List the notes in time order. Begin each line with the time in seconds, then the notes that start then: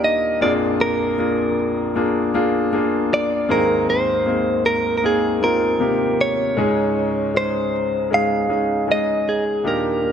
Already playing: D#2 A#2 A#3 D4 D#4 G4 G5
0.04 D#5
0.41 A#1 F2 A#3 D4 F4 G#4 D5
0.81 A#4
1.18 A#3 D4 F4 G#4
1.95 A#3 D4 F4 G#4
2.34 A#3 D4 F4 G#4
2.73 A#3 D4 F4 G#4
3.14 D5
3.49 G#1 D#2 A#3 C4 D#4 G#4 A#4
3.90 C5
4.26 A#3 C4 D#4 G#4
4.66 A#4
4.98 A#4
5.03 A#3 C4 D#4 G#4
5.42 A#3 C4 D#4 F4 A#4
5.79 C3 A#3 D#4 G4
6.21 C#5
6.57 C#2 G#2 G#3 C#4 D#4 G#4
7.34 G#3 C#4 D#4 G#4 C5
8.10 G#3 C#4 D#4 G#4 F5
8.49 G#3 C#4 D#4 G#4
8.88 G#3 C#4 D#4 G#4 D#5
9.29 G#4
9.64 D#2 A#2 A#3 D4 D#4 G4 A#4
10.02 A#3 D4 D#4 G4